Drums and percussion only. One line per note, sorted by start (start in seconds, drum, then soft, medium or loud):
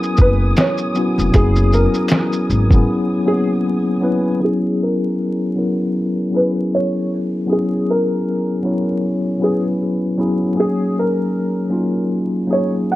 0.03 shaker soft
0.17 kick medium
0.17 shaker medium
0.57 snare loud
0.57 closed hi-hat medium
0.57 shaker medium
0.78 shaker soft
0.95 shaker soft
1.19 shaker soft
1.34 kick loud
1.34 closed hi-hat medium
1.34 shaker medium
1.56 shaker soft
1.73 shaker soft
1.94 shaker soft
2.08 snare loud
2.08 closed hi-hat medium
2.08 shaker medium
2.33 shaker soft
2.50 shaker medium
2.71 kick medium
2.71 shaker soft